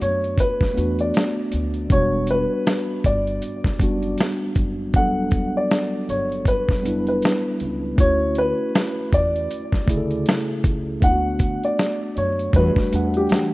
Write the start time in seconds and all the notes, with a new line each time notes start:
Already playing: A3 B3 D4 F#4
0.01 F#2 C#5, closed hi-hat
0.24 closed hi-hat
0.38 B4, kick, closed hi-hat
0.61 muted upright bass stroke, kick, snare
0.74 E2 A3 B3 D4, closed hi-hat
0.78 F#4
0.99 D5, closed hi-hat
1.14 snare, closed hi-hat
1.52 D2, closed hi-hat
1.74 closed hi-hat
1.89 E1 G3 B3 D4 C#5, kick, closed hi-hat
1.93 F#4
2.27 B4, closed hi-hat
2.67 snare, closed hi-hat
3.04 G1 D5, kick, closed hi-hat
3.27 closed hi-hat
3.42 closed hi-hat
3.64 kick, snare
3.79 F#1 G3 B3 D4, kick, closed hi-hat
3.83 F#4
4.02 closed hi-hat
4.18 snare, closed hi-hat
4.55 F#1, kick, closed hi-hat
4.94 E1 F#3 B3 D4 F#5, kick, closed hi-hat
4.99 G3 A4
5.31 kick, closed hi-hat
5.57 D5
5.71 snare, closed hi-hat
6.09 G1 C#5, closed hi-hat
6.32 closed hi-hat
6.45 B4, kick, closed hi-hat
6.69 muted upright bass stroke, kick, snare
6.82 F#1 G3 B3 D4, closed hi-hat
6.87 E4
7.07 B4, closed hi-hat
7.22 snare, closed hi-hat
7.60 C#2, closed hi-hat
7.96 D2 A3 C#4 E4, kick, closed hi-hat
8.00 F#4 C#5
8.35 B4, closed hi-hat
8.75 snare, closed hi-hat
9.12 E2 D5, kick, closed hi-hat
9.36 closed hi-hat
9.51 closed hi-hat
9.72 muted upright bass stroke, kick, snare
9.86 D2 C#3 A3 E4, kick, closed hi-hat
9.91 G#4
9.97 A4
10.11 closed hi-hat
10.26 snare, closed hi-hat
10.64 C#2, kick, closed hi-hat
11.00 D2 A3 B3 D4 F#5, kick, closed hi-hat
11.05 E4
11.11 F#4
11.39 kick, closed hi-hat
11.63 D5, closed hi-hat
11.79 snare, closed hi-hat
12.17 F#2 C#5, closed hi-hat
12.39 closed hi-hat
12.53 E2 G3 A3 D4 B4, kick, closed hi-hat
12.58 F#4
12.76 muted upright bass stroke, kick, snare
12.91 E2 G3 A3 D4, closed hi-hat
12.96 F#5
13.14 G4, closed hi-hat
13.29 E3, snare, closed hi-hat